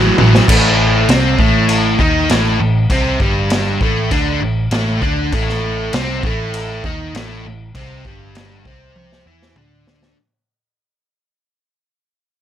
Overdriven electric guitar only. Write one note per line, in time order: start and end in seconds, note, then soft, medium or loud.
0.00 0.16 A2 medium
0.00 0.16 F#3 loud
0.18 0.46 A2 medium
0.18 0.46 F#3 medium
0.48 1.08 A2 loud
0.48 1.08 A3 loud
1.09 1.39 C3 medium
1.09 1.39 C4 medium
1.39 1.99 A2 medium
1.39 1.99 A3 loud
2.00 2.29 D#3 medium
2.00 2.30 D#4 loud
2.31 2.59 A2 loud
2.31 2.60 A3 loud
2.60 2.85 A2 medium
2.91 3.20 C3 medium
2.91 3.21 C4 loud
3.20 3.80 G2 medium
3.20 3.81 G3 loud
3.82 4.11 A2 loud
3.82 4.11 A3 loud
4.12 4.41 D3 medium
4.12 4.42 D4 medium
4.42 4.66 A2 medium
4.72 5.02 A2 loud
4.72 5.02 A3 loud
5.02 5.32 D3 loud
5.02 5.32 D4 loud
5.33 5.93 A2 medium
5.33 5.93 A3 loud
5.94 6.23 C3 medium
5.94 6.24 C4 loud
6.25 6.84 A2 medium
6.25 6.84 A3 loud
6.85 7.14 D#3 loud
6.85 7.14 D#4 loud
7.16 7.44 A2 loud
7.16 7.45 A3 loud
7.46 7.70 A2 medium
7.76 8.05 C3 loud
7.76 8.05 C4 loud
8.06 8.65 G2 medium
8.06 8.66 G3 loud
8.67 9.26 C3 loud
8.67 9.26 C4 loud
9.27 9.56 E3 medium
9.27 9.56 E4 loud
9.57 10.16 D3 medium
9.57 10.17 D4 loud